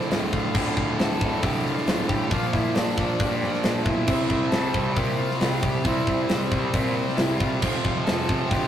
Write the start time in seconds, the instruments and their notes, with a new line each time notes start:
Already playing: distorted electric guitar D2 A2 D3
0.01 snare
0.09 picked electric bass D1, overdriven electric guitar D2 A2 D3, snare, open hi-hat
0.32 picked electric bass D1, lead electric guitar F4 F5, kick
0.54 picked electric bass D1, overdriven electric guitar D2 A2 D3, distorted electric guitar D2 A2 D3, kick, crash
0.77 picked electric bass D1, kick
0.99 picked electric bass D1, lead electric guitar A4 A5, snare, open hi-hat
1.21 picked electric bass D1, overdriven electric guitar D2 A2 D3, kick
1.41 picked electric bass C2, distorted electric guitar D2 A2 D3, lead electric guitar G4 G5, kick, open hi-hat
1.64 lead electric guitar F4 F5, snare
1.77 snare
1.86 picked electric bass D1, overdriven electric guitar D2 A2 D3, snare, open hi-hat
2.08 picked electric bass A1, lead electric guitar G4 G5, kick
2.29 picked electric bass A#1, overdriven electric guitar A#2 F3 A#3, distorted electric guitar A#2 F3 A#3, lead electric guitar F4 F5, kick, open hi-hat
2.53 picked electric bass A#1, lead electric guitar E4 E5, kick
2.75 picked electric bass A#1, lead electric guitar D4 D5, snare, open hi-hat
2.97 picked electric bass A#1, overdriven electric guitar A#2 F3 A#3, kick
3.20 picked electric bass G2, distorted electric guitar A#2 F3 A#3, kick, open hi-hat
3.43 snare
3.54 snare
3.63 picked electric bass A#1, overdriven electric guitar A#2 F3 A#3, snare, open hi-hat
3.83 picked electric bass B1, lead electric guitar E4 E5, kick
4.07 picked electric bass C2, overdriven electric guitar C3 G3 C4, distorted electric guitar C3 G3 C4, kick, crash
4.30 picked electric bass C2, kick
4.49 picked electric bass C2, lead electric guitar A4 A5, snare, open hi-hat
4.72 picked electric bass C2, overdriven electric guitar G3 C4, lead electric guitar A4 A5, kick
4.76 overdriven electric guitar C3
4.93 picked electric bass A#2, distorted electric guitar C3, lead electric guitar G4 G5, kick, open hi-hat
4.98 distorted electric guitar G3 C4
5.16 lead electric guitar F4 F5
5.31 snare
5.40 picked electric bass C2, overdriven electric guitar C3 G3 C4, snare, open hi-hat
5.60 picked electric bass C2, lead electric guitar G4 G5, kick
5.80 overdriven electric guitar C3, lead electric guitar E4 E5
5.84 picked electric bass C2, distorted electric guitar C3 G3 C4, overdriven electric guitar G3 C4, kick, open hi-hat
6.07 picked electric bass C2, kick
6.26 lead electric guitar C4 C5, snare, open hi-hat
6.31 picked electric bass C2
6.51 picked electric bass C2, overdriven electric guitar C3 G3 C4, kick
6.73 picked electric bass A#2, distorted electric guitar C3 G3 C4, kick, open hi-hat
7.08 snare
7.14 overdriven electric guitar C3, lead electric guitar E4 E5, snare, open hi-hat
7.19 picked electric bass C2, overdriven electric guitar G3 C4
7.37 picked electric bass C2, lead electric guitar F4 F5, kick
7.61 picked electric bass F1, overdriven electric guitar F2 C3 F3, distorted electric guitar F2 C3 F3, kick, crash
7.85 picked electric bass F1, kick
8.03 lead electric guitar A4 A5, open hi-hat
8.08 picked electric bass F1, snare
8.28 picked electric bass F1, overdriven electric guitar F2 C3 F3, kick
8.47 distorted electric guitar F2, lead electric guitar G4 G5, open hi-hat
8.51 picked electric bass D2, distorted electric guitar C3 F3, kick